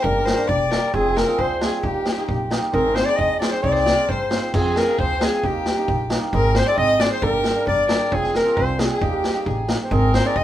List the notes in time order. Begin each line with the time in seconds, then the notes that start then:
0.02 G1 A#3 D4 G4 A#4, kick
0.25 C5, snare
0.37 A#3 D4 G4
0.48 E1 D5, kick
0.71 A#3 D4 G4 A#4, snare
0.93 F1 C4 F4 G#4, kick
1.16 A#4, snare
1.26 C4 F4 G#4
1.38 D2 C5, kick
1.61 C4 F4 G#4, snare
1.83 D#2 A#3 D#4 G4, kick
2.05 snare
2.17 A#3 D#4 G4
2.29 A#1, kick
2.50 A#3 D#4 G4, snare
2.72 G#1 C4 D#4 G#4 A#4, kick
2.95 C5, snare
3.05 C4 D#4 G#4 D5
3.16 D#2 D#5, kick
3.39 C4 D#4 G#4 D5, snare
3.51 C5
3.62 C2 C4 D#4 G4 D5, kick
3.72 C5, snare
3.80 D5
3.86 snare
3.96 C4 D#4 A#4
4.09 G2 C5, kick
4.31 C4 D#4 F4, snare
4.54 F2 C4 F4 G#4, kick, crash
4.76 A#4, snare
4.88 C4 F4 G#4
4.99 D2 C5, kick
5.21 C4 F4 G4 G#4, snare
5.43 D#2 A#3 D#4 G4, kick
5.66 snare
5.77 A#3 D#4 G4
5.88 A#1, kick
6.10 A#3 D#4 G4, snare
6.33 G#1 C4 D#4 G#4 A#4, kick
6.55 C5, snare
6.59 C5
6.66 C4 D#4 G#4 D5
6.77 G#1 D#5, kick
7.00 C4 D#4 G#4 D5, snare
7.11 C5
7.22 G1 A#3 D4 G4 A#4, kick
7.44 snare
7.56 A#3 D4 A#4
7.67 G1 D5, kick
7.88 A#3 D4 G4 A#4, snare
8.10 F1 C4 F4 G#4, kick
8.14 G#4
8.23 snare
8.34 A#4, snare
8.44 C4 F4 G#4
8.57 C2 C5, kick
8.78 C4 F4 G#4, snare
8.85 G4
8.91 G#4
9.01 D#2 A#3 D#4 G4, kick
9.24 snare
9.35 A#3 D#4 G4
9.46 A1 G#4, kick
9.68 A#3 D#4 G4, snare
9.84 C5
9.90 G#1 C4 D#4 G#4 A#4, kick
10.14 C5, snare
10.24 C4 D#4 G#4 D5
10.36 D#2 D#5, kick